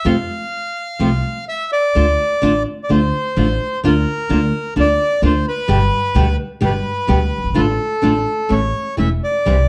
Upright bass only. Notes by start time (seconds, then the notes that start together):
0.05 F2
1.00 C2
1.96 D2
2.43 A1
2.90 D2
3.37 A1
3.84 D2
4.30 D2
4.77 D2
5.22 D2
5.69 G1
6.15 D2
6.62 G1
7.09 D2
7.38 F#1
7.44 G1
7.50 G#1
7.57 A1
8.04 A1
8.50 A1
8.98 E1
9.46 C2